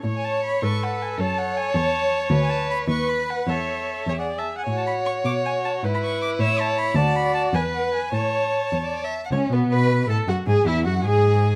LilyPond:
<<
  \new Staff \with { instrumentName = "Violin" } { \time 6/8 \key a \major \tempo 4. = 104 r16 gis''16 a''8 b''8 cis'''8 fis''8 gis''8 | a''8 fis''8 gis''8 a''4. | r16 gis''16 a''8 b''8 cis'''8 b''8 fis''8 | e''4.~ e''16 fis''8 a''8 gis''16~ |
gis''16 a''16 b''8 cis'''8 d'''8 gis''8 a''8 | r16 b''16 cis'''8 d'''8 e'''8 a''8 b''8 | a''8 b''8 a''8 gis''8 fis''8 gis''8 | a''2~ a''8 r8 |
\key e \major cis''8 b'8 b''4 a''8 fis''8 | gis''8 e''8 fis''8 gis''4. | }
  \new Staff \with { instrumentName = "Viola" } { \time 6/8 \key a \major cis''4. a'4. | cis''2.~ | cis''4. b'4. | cis''4. cis''16 d''8 e''8 fis''16 |
cis''2. | b'4. cis''4. | d''4. b'4. | cis''2~ cis''16 r8. |
\key e \major cis'8 b8 b'4 a'8 fis'8 | gis'8 e'8 fis'8 gis'4. | }
  \new Staff \with { instrumentName = "Violin" } { \time 6/8 \key a \major cis''4. b'4. | a'4. cis''4. | b'4. b'4. | a'4. gis'4 r8 |
fis'4. fis'4. | e'2. | fis'4. b'4. | cis''4. cis''16 d''8 e''8 fis''16 |
\key e \major cis'8 b8 b'4 a'8 fis'8 | gis'8 e'8 fis'8 gis'4. | }
  \new Staff \with { instrumentName = "Cello" } { \clef bass \time 6/8 \key a \major a,4. gis,4. | fis,4. e,4. | d,4. dis,4. | e,4. e,4. |
a,4. b,4. | gis,4. a,4. | d,4. e,4. | a,4. e,4. |
\key e \major cis,8 b,8 b,4 a,8 fis,8 | gis,8 e,8 fis,8 gis,4. | }
>>